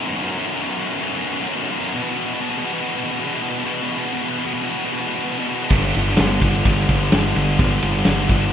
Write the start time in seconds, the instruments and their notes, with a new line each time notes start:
0.07 distorted electric guitar B1 F#2
0.14 distorted electric guitar B1 F#2
0.23 distorted electric guitar B1 F#2
0.30 distorted electric guitar B1 F#2
0.37 distorted electric guitar B1 F#2
0.45 distorted electric guitar B1 F#2
0.53 distorted electric guitar B1 F#2
0.61 distorted electric guitar B1 F#2
0.69 distorted electric guitar B1 F#2
0.77 distorted electric guitar B1 F#2
0.85 distorted electric guitar B1 F#2
0.93 distorted electric guitar B1 F#2
1.01 distorted electric guitar B1 F#2
1.09 distorted electric guitar B1 F#2
1.17 distorted electric guitar B1 F#2
1.23 distorted electric guitar B1 F#2
1.32 distorted electric guitar B1 F#2
1.40 distorted electric guitar B1 F#2
1.48 distorted electric guitar B1 F#2
1.56 distorted electric guitar B1 F#2
1.63 distorted electric guitar B1 F#2
1.72 distorted electric guitar B1 F#2
1.79 distorted electric guitar B1 F#2
1.87 distorted electric guitar B1 F#2
1.94 distorted electric guitar E2 B2
2.02 distorted electric guitar E2 B2
2.10 distorted electric guitar E2 B2
2.17 distorted electric guitar E2 B2
2.26 distorted electric guitar E2 B2
2.34 distorted electric guitar E2 B2
2.40 distorted electric guitar E2 B2
2.49 distorted electric guitar E2 B2
2.57 distorted electric guitar E2 B2
2.65 distorted electric guitar E2 B2
2.72 distorted electric guitar E2 B2
2.81 distorted electric guitar E2 B2
2.87 distorted electric guitar E2 B2
2.96 distorted electric guitar E2 B2
3.04 distorted electric guitar E2 B2
3.11 distorted electric guitar E2 B2
3.20 distorted electric guitar E2 B2
3.26 distorted electric guitar E2 B2
3.35 distorted electric guitar E2 B2
3.42 distorted electric guitar E2 B2
3.50 distorted electric guitar E2 B2
3.59 distorted electric guitar E2 B2
3.65 distorted electric guitar E2 B2
3.73 distorted electric guitar E2 B2
3.83 distorted electric guitar E2 B2
3.91 distorted electric guitar E2 B2
3.98 distorted electric guitar E2 B2
4.06 distorted electric guitar E2 B2
4.13 distorted electric guitar E2 B2
4.22 distorted electric guitar E2 B2
4.29 distorted electric guitar E2 B2
4.38 distorted electric guitar E2 B2
4.45 distorted electric guitar E2 B2
4.52 distorted electric guitar E2 B2
4.62 distorted electric guitar E2 B2
4.69 distorted electric guitar E2 B2
4.77 distorted electric guitar E2 B2
4.85 distorted electric guitar E2 B2
4.92 distorted electric guitar E2 B2
5.00 distorted electric guitar E2 B2
5.08 distorted electric guitar E2 B2
5.15 distorted electric guitar E2 B2
5.24 distorted electric guitar E2 B2
5.32 distorted electric guitar E2 B2
5.39 distorted electric guitar E2 B2
5.47 distorted electric guitar E2 B2
5.54 distorted electric guitar E2 B2
5.63 distorted electric guitar E2 B2
5.70 picked electric bass G1, distorted electric guitar G2 D3, kick, crash
5.78 distorted electric guitar G2 D3
5.85 distorted electric guitar G2 D3
5.94 picked electric bass G1, distorted electric guitar G2 D3, snare, ride
6.02 distorted electric guitar G2 D3
6.09 distorted electric guitar G2 D3
6.17 picked electric bass G1, distorted electric guitar G2 D3, snare, ride
6.25 distorted electric guitar G2 D3
6.32 distorted electric guitar G2 D3
6.41 picked electric bass G1, distorted electric guitar G2 D3, kick, ride
6.49 distorted electric guitar G2 D3
6.56 distorted electric guitar G2 D3
6.65 picked electric bass G1, distorted electric guitar G2 D3, kick, ride
6.72 distorted electric guitar G2 D3
6.80 distorted electric guitar G2 D3
6.88 picked electric bass G1, distorted electric guitar G2 D3, kick, ride
6.96 distorted electric guitar G2 D3
7.04 distorted electric guitar G2 D3
7.12 picked electric bass G1, distorted electric guitar G2 D3, snare, ride
7.19 distorted electric guitar G2 D3
7.27 distorted electric guitar G2 D3
7.35 picked electric bass G1, distorted electric guitar G2 D3, ride
7.42 distorted electric guitar G2 D3
7.50 distorted electric guitar G2 D3
7.59 picked electric bass G1, distorted electric guitar G2 D3, kick, ride
7.67 distorted electric guitar G2 D3
7.76 distorted electric guitar G2 D3
7.83 picked electric bass G1, distorted electric guitar G2 D3, ride
7.90 distorted electric guitar G2 D3
7.98 distorted electric guitar G2 D3
8.05 picked electric bass G1, distorted electric guitar G2 D3, snare, ride
8.14 distorted electric guitar G2 D3
8.22 distorted electric guitar G2 D3
8.29 picked electric bass G1, distorted electric guitar G2 D3, kick, ride
8.39 distorted electric guitar G2 D3
8.47 distorted electric guitar G2 D3